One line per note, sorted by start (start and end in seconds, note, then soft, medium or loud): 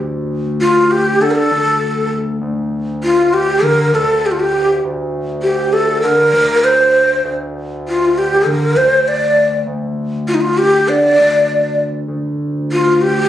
0.00 1.17 D2 medium
0.61 0.93 F4 medium
0.91 1.23 G4 loud
1.20 1.50 D3 loud
1.20 1.32 A4 medium
1.31 1.37 A#4 medium
1.35 2.12 A4 loud
1.51 2.38 D2 medium
2.42 3.59 D2 medium
3.04 3.35 F4 medium
3.33 3.65 G4 medium
3.62 3.91 D3 loud
3.62 3.96 A#4 loud
3.93 4.80 D2 medium
3.93 4.27 A4 medium
4.26 4.33 G4 medium
4.31 4.41 F4 medium
4.40 4.70 G4 medium
4.85 6.01 D2 medium
5.43 5.75 G4 medium
5.73 6.01 A4 medium
6.02 6.33 D3 loud
6.02 6.66 A#4 loud
6.33 7.21 D2 medium
6.64 7.25 C5 medium
7.24 8.42 D2 loud
7.88 8.20 F4 medium
8.18 8.48 G4 medium
8.46 8.75 D3 medium
8.46 8.78 A#4 medium
8.76 9.63 D2 medium
8.76 9.10 C5 medium
9.08 9.53 D5 medium
9.67 10.84 D2 medium
10.28 10.36 F4 medium
10.34 10.42 D#4 medium
10.41 10.59 F4 medium
10.58 10.90 G4 medium
10.88 11.17 D3 loud
10.88 11.79 D5 medium
11.19 12.05 D2 medium
12.08 13.25 D2 loud
12.72 13.03 F4 medium
13.02 13.29 G4 loud